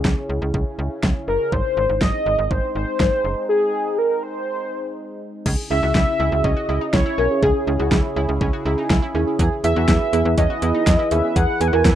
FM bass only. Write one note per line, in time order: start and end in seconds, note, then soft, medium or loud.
0.05 0.15 C#2 loud
0.29 0.40 C#2 medium
0.42 0.52 C#2 loud
0.54 0.65 C#2 medium
0.79 0.89 C#2 medium
1.03 1.14 C#2 loud
1.28 1.38 F#1 medium
1.52 1.63 G#1 loud
1.77 1.88 G#1 loud
1.89 2.00 G#1 medium
2.01 2.12 G#1 loud
2.26 2.37 G#1 loud
2.38 2.49 G#1 loud
2.51 2.61 G#1 medium
2.75 2.86 G#1 medium
3.00 3.10 G#1 loud
3.25 3.35 F#1 medium
5.46 5.56 C#2 loud
5.71 5.81 C#2 loud
5.83 5.93 C#2 loud
5.95 6.05 C#2 loud
6.20 6.30 C#2 loud
6.32 6.43 C#2 loud
6.44 6.55 C#2 loud
6.69 6.79 C#2 medium
6.94 7.04 C#2 medium
7.18 7.29 B1 medium
7.43 7.53 C#2 loud
7.67 7.78 C#2 loud
7.80 7.90 C#2 loud
7.92 8.02 C#2 medium
8.16 8.27 C#2 loud
8.29 8.39 C#2 loud
8.41 8.52 C#2 loud
8.65 8.76 C#2 loud
8.90 9.01 C#2 loud
9.15 9.25 D#2 medium
9.39 9.50 E2 loud
9.64 9.74 E2 loud
9.76 9.87 E2 loud
9.88 9.99 E2 loud
10.13 10.24 E2 medium
10.25 10.36 E2 loud
10.38 10.48 E2 loud
10.62 10.73 E2 medium
10.87 10.97 E2 loud
11.11 11.22 D#2 medium
11.36 11.47 E2 loud
11.61 11.71 E2 loud
11.73 11.83 E2 loud
11.85 11.95 E2 loud